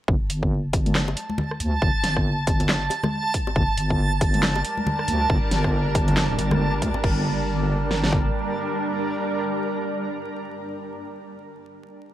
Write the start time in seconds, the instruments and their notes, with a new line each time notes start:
0.08 wobble bass G1, synth texture A5, kick
0.30 wobble bass G1, closed hi-hat
0.43 kick
0.73 kick, closed hi-hat, high bongo
0.86 closed hi-hat, high conga
0.95 cross-stick, snare, clap
1.08 high bongo
1.17 closed hi-hat
1.29 high conga
1.38 low conga
1.51 cross-stick
1.60 wobble bass D2, closed hi-hat
1.82 wobble bass G1, kick
2.04 wobble bass G1, snare, closed hi-hat
2.17 kick, cross-stick
2.47 kick, closed hi-hat, high bongo
2.60 closed hi-hat, low conga
2.69 snare, clap
2.90 closed hi-hat, high bongo
3.03 cross-stick, high bongo, high conga, low conga
3.34 kick, closed hi-hat
3.47 high bongo
3.56 wobble bass G1, ambient pad G3 D4 A#4, kick
3.78 wobble bass G1, closed hi-hat
3.90 kick
4.21 kick, closed hi-hat, high bongo
4.34 closed hi-hat, high conga
4.43 cross-stick, snare, clap
4.55 high bongo
4.64 closed hi-hat
4.77 high conga
4.87 low conga
4.99 cross-stick
5.08 wobble bass D2, closed hi-hat
5.30 wobble bass G1, kick
5.51 wobble bass G1, snare, closed hi-hat
5.64 kick, cross-stick
5.95 kick, closed hi-hat, high bongo
6.08 closed hi-hat, low conga
6.17 snare, clap
6.29 wobble bass D1
6.38 wobble bass G1, closed hi-hat, high bongo
6.51 cross-stick, high bongo, high conga, low conga
6.82 wobble bass D2, kick, closed hi-hat
6.94 high bongo
7.04 wobble bass G1, ambient pad G3 D4 A#4, kick, crash
7.91 snare
8.04 snare
8.12 kick